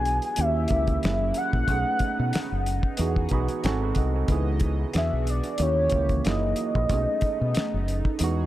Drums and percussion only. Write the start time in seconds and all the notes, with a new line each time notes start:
0.05 closed hi-hat
0.22 closed hi-hat
0.36 closed hi-hat
0.68 kick, closed hi-hat
0.87 kick, closed hi-hat
1.03 finger snap, snare, closed hi-hat
1.34 closed hi-hat
1.53 kick
1.68 kick, closed hi-hat
1.99 kick, closed hi-hat
2.33 finger snap, snare, closed hi-hat
2.66 closed hi-hat
2.83 kick
2.97 closed hi-hat
3.16 kick
3.29 kick, closed hi-hat
3.48 closed hi-hat
3.64 finger snap, snare, closed hi-hat
3.95 kick, closed hi-hat
4.28 kick, closed hi-hat
4.60 kick, closed hi-hat
4.94 finger snap, snare, closed hi-hat
5.27 closed hi-hat
5.44 closed hi-hat
5.58 closed hi-hat
5.90 kick, closed hi-hat
6.09 kick, closed hi-hat
6.25 finger snap, snare, closed hi-hat
6.56 closed hi-hat
6.75 kick
6.89 kick, closed hi-hat
7.21 kick, closed hi-hat
7.55 finger snap, snare, closed hi-hat
7.88 closed hi-hat
8.05 kick
8.19 closed hi-hat